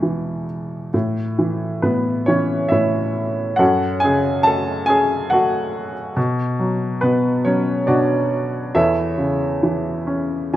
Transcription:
Already playing: E2 B2 E3 G#3 E4 G#4 B4 E5
0.02 E3
0.94 A2
1.39 E3
1.82 A2 B3 B4
2.26 E3 C#4 C#5
2.69 A2 E4 C#5 E5
3.56 F#2 F#4 A4 C#5 F#5
4.00 C#3 G#5
4.05 G#4
4.43 A3 A5
4.47 A4
4.86 C#4 G#4 G#5
5.30 A3 F#4 A4 F#5
6.17 B2
6.59 F#3
7.01 B2 B3 B4
7.45 F#3 C#4 C#5
7.87 B2 D4 F#4 D5
8.75 E2 E4 A4 C#5 E5
9.18 C#3
9.63 E3
10.07 C#4

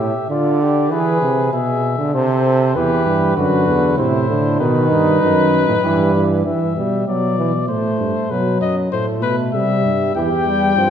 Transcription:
Already playing: G4 E5
0.00 A2
0.30 D3 F4 D5
0.62 G4
0.91 E3 G#4 B4
1.22 C3
1.52 B2 G#4 E5
1.98 D3
2.14 C3 A4 C5
2.46 A4
2.75 E2 E3 G4 B4
3.06 G2
3.36 F#2 D3 F#4 B4
3.68 E2
3.97 A2 C3 E4 C5
4.30 D3
4.60 B2 D#3 D#4 B4
4.91 G2
5.22 F#2 D#3
5.68 A2
5.83 G2 E3 G4
6.14 E3
6.45 G2 E3 E5
6.77 B2 G3
7.07 B2 F#3 D5
7.38 E3
7.69 A2 A3 C5
8.00 G2
8.31 B2 F#3 B4
8.61 F#2 D#5
8.92 A2 A3 C5
9.22 B2 B4
9.54 C3 G3 E5
9.85 G2
10.16 E2 E3 G4 G5
10.47 G3
10.77 G2 F3 C4

